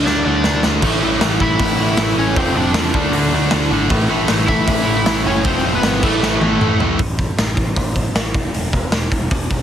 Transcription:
0.06 D2 D3 A3 D4 D5, snare
0.25 D2 D3 A3 D4 D5
0.44 D2 D3 A3 D4, snare
0.63 D2 D3 A3 D4, snare
0.82 A1 A2 E3 A3, kick, open hi-hat, crash
1.02 A1 A2 E3 A3
1.21 A1 A2 E3 A3, snare, open hi-hat
1.40 A1 A2 E3 A3 E4 E5, kick
1.59 A1 A2 E3 A3, kick, open hi-hat
1.78 A1 A2 E3 A3
1.97 A1 A2 E3 A3, snare, open hi-hat
2.16 A1 A2 E3 A3 C#4 C#5
2.36 F1 F2 C3 F3 C4 C5, kick, open hi-hat
2.55 F1 F2 C3 F3 D4 D5
2.74 E2 F2 C3 F3, snare, open hi-hat
2.94 D2 D3 A3 D4, kick
3.12 D2 D3 A3 D4, open hi-hat
3.32 D2 D3 A3 D4
3.51 D2 D3 A3 D4, snare, open hi-hat
3.70 G#1 D3 A3 D4
3.90 A1 A2 E3 A3, kick, open hi-hat
4.09 A1 A2 E3 A3
4.28 A1 A2 E3 A3, snare, open hi-hat
4.47 A1 A2 E3 A3 E4 E5, kick
4.66 A1 A2 E3 A3, kick, open hi-hat
4.86 A1 A2 E3 A3
5.05 A1 A2 E3 A3, snare, open hi-hat
5.25 F#1 A2 E3 A3 C#4 C#5
5.44 F1 F2 C3 F3 C4 C5, kick, open hi-hat
5.63 F1 F2 C3 F3
5.75 B3 B4
5.81 G#1 F2 C3 F3, snare, open hi-hat
6.03 A1 A2 E3 A3 A4, kick, crash
6.21 A1 A2 E3 A3, snare
6.41 A1 A2 E3 A3, high tom
6.60 A1 A2 E3 A3, mid tom
6.80 A1 A2 E3 A3, floor tom
6.99 A1, kick, open hi-hat
7.19 kick, open hi-hat
7.37 A1, snare, open hi-hat
7.57 A1, kick, open hi-hat
7.76 A1, kick, open hi-hat
7.96 kick, open hi-hat
8.15 A1, snare, open hi-hat
8.34 E1, kick, open hi-hat
8.54 E1, open hi-hat
8.73 E1, kick, open hi-hat
8.92 E1, snare, open hi-hat
9.12 E1, kick, open hi-hat
9.31 E1, kick, open hi-hat
9.51 E1, kick, open hi-hat

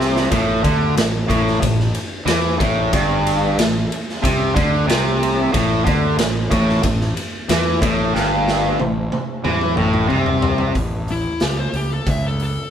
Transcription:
Already playing: C2 C3
0.01 snare
0.16 snare
0.31 A1 A2, kick, ride
0.64 D2 D3, kick, ride
0.96 A1 A2, snare, ride
1.28 A1 A2, kick, ride
1.47 snare
1.61 A1 A2, kick, ride
1.80 snare
1.95 ride
2.26 E2 E3, snare, ride
2.59 A1 A2, kick, ride
2.93 G1 G2, kick, ride
3.27 ride
3.58 A1 A2, snare, ride
3.92 ride
4.09 snare
4.22 C2 C3, kick, ride
4.55 D2 D3, kick, ride
4.87 C2 C3, snare, ride
5.23 ride
5.52 A1 A2, kick, ride
5.85 D2 D3, kick, ride
6.18 A1 A2, snare, ride
6.51 A1 A2, kick, ride
6.69 snare
6.83 A1 A2, kick, ride
7.01 snare
7.17 ride
7.49 E2 E3, snare, ride
7.81 A1 A2, kick, ride
8.14 G1 G2, snare
8.48 snare
8.80 A1 A2, high tom
9.12 high tom
9.44 E2 E3, mid tom
9.61 mid tom
9.77 A1 A2, mid tom
9.93 mid tom
10.08 C2 C3, mid tom
10.26 floor tom
10.42 floor tom
10.58 floor tom
10.75 A1, kick, open hi-hat
11.08 E4, open hi-hat
11.40 C#2 G4, snare, open hi-hat
11.59 C5
11.73 C#2 G4, open hi-hat
11.94 A4
12.07 C#2 E5, kick, open hi-hat
12.27 A4
12.40 A4, open hi-hat

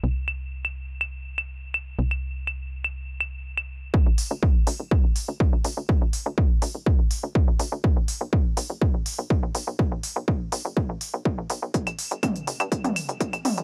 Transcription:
0.04 C2
0.28 claves
0.65 claves
1.01 claves
1.38 claves
1.74 claves
1.99 C2
2.11 claves
2.47 claves
2.84 claves
3.21 claves
3.58 claves
3.94 kick
4.06 D2
4.18 open hi-hat
4.31 D2
4.43 kick
4.67 D2, open hi-hat
4.80 D1
4.91 kick
5.04 D1
5.16 open hi-hat
5.28 D2
5.40 kick
5.53 D2
5.64 D2, open hi-hat
5.77 D2
5.89 kick
6.02 D2
6.13 open hi-hat
6.26 D2
6.38 kick
6.62 D2, open hi-hat
6.75 D1
6.86 kick
6.99 D1
7.11 open hi-hat
7.23 D2
7.35 kick
7.48 D2
7.59 D2, open hi-hat
7.72 D2
7.84 kick
7.97 B1
8.08 open hi-hat
8.21 B1
8.33 kick
8.57 B1, open hi-hat
8.70 F#1
8.82 kick
8.94 F#1
9.06 open hi-hat
9.19 B1
9.30 kick
9.43 B1
9.55 B1, open hi-hat
9.67 B1
9.79 kick
9.92 B1
10.03 open hi-hat
10.16 B1
10.28 kick
10.52 B1, open hi-hat
10.65 F#1
10.77 kick
10.89 A1
11.01 open hi-hat
11.14 B1
11.25 kick
11.38 A1
11.50 B1, open hi-hat
11.62 B1
11.74 kick, closed hi-hat
11.87 G1, closed hi-hat, claves
11.99 open hi-hat
12.11 G1, closed hi-hat
12.23 kick, closed hi-hat, mid tom, claves
12.36 closed hi-hat
12.47 G1, open hi-hat
12.60 G2, closed hi-hat, claves
12.72 kick, closed hi-hat
12.84 G2, closed hi-hat, mid tom
12.96 open hi-hat, claves
13.09 G1, closed hi-hat
13.21 kick, closed hi-hat
13.33 G1, closed hi-hat, claves
13.45 G1, mid tom, open hi-hat
13.58 G1, closed hi-hat

